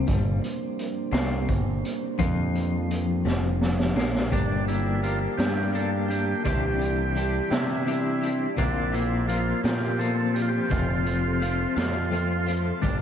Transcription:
Already playing: G3 A#3 D4 C5
0.07 G1 G2, kick, closed hi-hat, shaker
0.25 shaker
0.42 muted clean electric guitar stroke, muted picked electric bass stroke, closed hi-hat
0.79 closed hi-hat
1.12 C2 C3, snare, closed hi-hat, shaker
1.49 G1 G2, kick, closed hi-hat
1.85 closed hi-hat
2.18 F2 F3, kick, closed hi-hat, shaker
2.55 closed hi-hat
2.91 closed hi-hat
3.08 shaker
3.25 F1 F2, snare, shaker
3.43 shaker
3.61 snare
3.79 snare
3.96 A#1 A#2, snare
4.14 snare, shaker
4.31 G1 G2 D3 G3 A#3 D4 G4 D5 G5, kick, closed hi-hat
4.67 G3 A#3 D4 E4 G4, closed hi-hat
5.02 G3 A#3 D4 F4 G4, closed hi-hat
5.37 G2 G3 A#3 D4 G4, snare, closed hi-hat
5.72 G3 A#3 D4 G4 A4, closed hi-hat
6.08 G3 A#3 D4 G4, closed hi-hat
6.43 C2 C3 E3 G3 D4 G4 E5 C6, kick, closed hi-hat
6.79 G3 D4 G4, closed hi-hat
7.15 E3 G3 D4 G4, closed hi-hat
7.51 C3 G3 D4 E4 G4, snare, closed hi-hat
7.86 E3 G3 D4 G4, closed hi-hat
8.21 G3 D4 G4, closed hi-hat
8.57 A#1 A#2 F3 A#3 C4 D4 F4 C5, kick, closed hi-hat
8.92 A#3 C4 E4 F4, closed hi-hat
9.27 F3 A#3 C4 F4, closed hi-hat
9.63 A#2 A#3 C4 F4 G4, snare, closed hi-hat
9.98 F3 A#3 C4 F4 A4, closed hi-hat
10.34 A#3 C4 F4 G4, closed hi-hat
10.42 F4
10.49 G4
10.69 F1 F2 C3 F3 A3 C4 F4 A4, kick, closed hi-hat
11.04 F3 A3 C4 F4, closed hi-hat
11.40 F3 A3 C4 F4, closed hi-hat
11.76 F2 F3 A3 C4 F4, snare, closed hi-hat
12.11 F3 A3 C4 F4, closed hi-hat
12.47 F3 A3 C4 F4, closed hi-hat
12.82 G1 G2 D3 G3 A#3 D4 G4 D5 G5 D6, kick, closed hi-hat, shaker

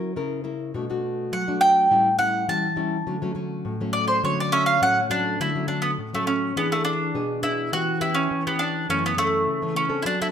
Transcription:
Already playing: F#3 C#4 E4 A#4
0.16 C#3 C#4 E4 A#4
0.44 C#4 E4 A#4
0.74 B2 A3 D4 F#4
0.90 A3 D4 F#4
1.32 F#3 F#5
1.48 A3 D4 F#4
1.61 G5
1.90 A2 G3 C#4 E4
2.18 G3 C#4 E4 F#5
2.48 E3 G3 C#4 E4 A5
2.76 G3 C#4 E4
3.07 D3 F#3 A3 C#4
3.22 F#3 A3 C#4
3.35 F#3 A3 C#4
3.65 A2
3.81 F#3 A3 C#4
3.93 D5
4.08 C5
4.23 D3 F#3 A3 C#4 C#5
4.40 D5
4.52 C#4 E5
4.66 F5
4.81 A2 F#3 A3 C#4 F#5
5.10 F#3 A3 C#4 D4
5.40 D3 F#3 A3 C#4 E4
5.55 F#3 A3 C#4
5.68 F#3 A3 C#4 D4
5.82 B3
5.98 A2
6.13 F#3 A3 C#4
6.27 C#4
6.56 E3 B3 D4 G#4
6.72 A3
6.85 D4
7.14 B2 B3 D4 G#4
7.42 B3 D4 E4 G#4
7.72 E3 B3 C#4 F#4 G4
8.01 B3 C#4 E4 G4
8.15 C#4
8.31 E3
8.46 B3 C#4 G4
8.59 D4
8.89 F#2 E3 A3 C#4
9.06 B3
9.17 E3 A3 C#4
9.47 C#3
9.62 E3 A3 C#4
9.76 C#4
9.89 C4 D4 A4
10.02 F#3 D4 E4
10.21 C4 D4 E4 A4

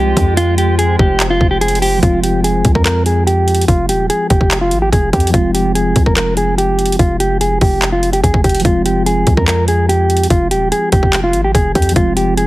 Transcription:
Already playing: C2 F3 G#3 C4 F4 G4 C5 G5
0.17 F2, kick, closed hi-hat
0.37 F4, closed hi-hat
0.58 G4, closed hi-hat
0.79 G#4, closed hi-hat
0.99 F1 G4, kick
1.20 clap, closed hi-hat
1.30 F4
1.41 F1, kick
1.51 G4
1.61 G#4, closed hi-hat
1.68 closed hi-hat
1.75 closed hi-hat
1.82 G4, open hi-hat
1.98 F3 G#3
2.03 F1 C4 F4, kick, closed hi-hat
2.23 G4, closed hi-hat
2.44 G#4, closed hi-hat
2.65 C2, kick, closed hi-hat
2.75 F2 A#4, kick
2.85 A#4, clap, closed hi-hat
3.06 G#4, closed hi-hat
3.27 G4, closed hi-hat
3.48 closed hi-hat
3.55 closed hi-hat
3.61 closed hi-hat
3.68 F1 F4, kick, closed hi-hat
3.89 D#1 G4, closed hi-hat
4.10 G#4, closed hi-hat
4.30 F1 G4, kick, closed hi-hat
4.41 F1, kick
4.51 clap, closed hi-hat
4.61 F4
4.71 G#1, closed hi-hat
4.82 G4
4.92 F1 G#4, kick, closed hi-hat
5.13 F2 G4, kick, closed hi-hat
5.20 closed hi-hat
5.27 F3, closed hi-hat
5.32 F1 G#3 C4 F4, kick, closed hi-hat
5.38 F4
5.54 G4, closed hi-hat
5.75 G#4, closed hi-hat
5.96 C2, kick, closed hi-hat
6.06 F1 A#4, kick
6.17 A#4, clap, closed hi-hat
6.37 G#4, closed hi-hat
6.58 G4, closed hi-hat
6.79 closed hi-hat
6.86 closed hi-hat
6.92 closed hi-hat
6.99 F1 F4, kick, closed hi-hat
7.20 G4, closed hi-hat
7.41 G#4, closed hi-hat
7.61 F1 G4, kick, open hi-hat
7.82 clap, closed hi-hat
7.92 F4
8.03 closed hi-hat
8.13 G4, closed hi-hat
8.24 G#1 G#4, kick, closed hi-hat
8.34 F1, kick
8.44 F1 G4, kick, closed hi-hat
8.49 closed hi-hat
8.55 closed hi-hat
8.60 F3 G#3, closed hi-hat
8.65 F1 C4 F4, kick, closed hi-hat
8.86 G4, closed hi-hat
9.06 G#4, closed hi-hat
9.27 C2, kick, closed hi-hat
9.37 F2 A#4, kick
9.48 A#4, clap, closed hi-hat
9.68 G#4, closed hi-hat
9.89 G4, closed hi-hat
10.10 closed hi-hat
10.17 closed hi-hat
10.23 closed hi-hat
10.30 F1 F4, kick, closed hi-hat
10.51 D#1 G4, closed hi-hat
10.72 G#4, closed hi-hat
10.92 F1 G4, kick, closed hi-hat
11.03 F1, kick
11.13 clap, closed hi-hat
11.24 F4
11.33 G#1, closed hi-hat
11.44 G4
11.55 F1 G#4, kick, closed hi-hat
11.75 F2 G4, kick, closed hi-hat
11.82 closed hi-hat
11.89 F3, closed hi-hat
11.94 F1 G#3 C4 F4, kick, closed hi-hat
12.00 F4
12.17 G4, closed hi-hat
12.37 G#4, closed hi-hat

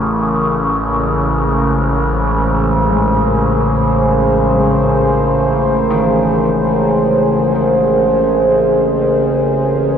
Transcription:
Already playing: A1 C#3 G#4 A#4
0.70 C5
2.91 G#2
4.56 G#2
5.91 D#3

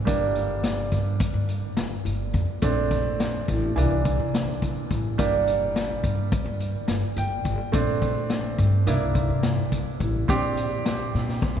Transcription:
0.05 G1 G3 A#3 D4, kick, closed hi-hat
0.35 closed hi-hat
0.64 snare, closed hi-hat
0.92 G2, kick, snare, closed hi-hat
1.20 kick, closed hi-hat
1.33 G2
1.49 closed hi-hat
1.77 G1, snare, closed hi-hat
2.05 G1, closed hi-hat
2.33 F2, kick, closed hi-hat
2.62 A#1 A3 C4 D4, kick, closed hi-hat, shaker
2.91 kick, snare, closed hi-hat
3.20 snare, closed hi-hat
3.48 A1, kick, snare, closed hi-hat
3.76 C2 E3 A#3 D4, closed hi-hat
3.91 C2
4.05 kick, closed hi-hat, shaker
4.19 C3
4.34 snare, closed hi-hat
4.62 kick, closed hi-hat
4.91 A1, kick, closed hi-hat
5.18 G1 G3 A#3 D4, kick, closed hi-hat, shaker
5.47 closed hi-hat
5.76 snare, closed hi-hat
6.03 G2, kick, closed hi-hat
6.32 kick, closed hi-hat
6.45 G2
6.60 closed hi-hat, shaker
6.88 G1, snare, closed hi-hat
7.16 G1 G5, closed hi-hat
7.45 G1, kick, closed hi-hat
7.72 A#1 A3 C4 D4, kick, closed hi-hat, shaker
8.02 kick, closed hi-hat
8.30 snare, closed hi-hat
8.58 G2, kick, closed hi-hat
8.87 C2 A#3 D4 E4, closed hi-hat
9.01 C2
9.15 kick, closed hi-hat, shaker
9.30 C3
9.43 snare, closed hi-hat
9.72 kick, closed hi-hat
10.00 A1, kick, closed hi-hat
10.28 A#1 C4 D4 G4, kick, closed hi-hat, shaker
10.57 closed hi-hat
10.86 snare, closed hi-hat
11.14 A#2, snare
11.28 snare
11.42 kick, snare, shaker
11.56 A#2, high tom

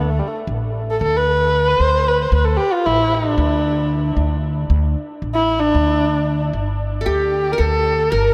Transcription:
Already playing: D2
0.00 B3
0.10 A3
0.19 G3
0.27 A3
0.47 A1
0.90 A4
1.01 D2 A4
1.17 B4
1.68 B4
1.80 D2 C5
2.08 B4
2.22 C5
2.32 D2 B4
2.45 A4
2.57 G4
2.73 F4
2.86 A1 E4
3.14 D#4
3.28 D4
3.38 D2
4.17 D2
4.70 D2
5.22 A1
5.35 E4
5.61 D4
5.75 D2
6.53 G1
7.01 A4
7.06 D2 G4
7.52 A#4
7.58 D2 A4
8.10 G1 A#4

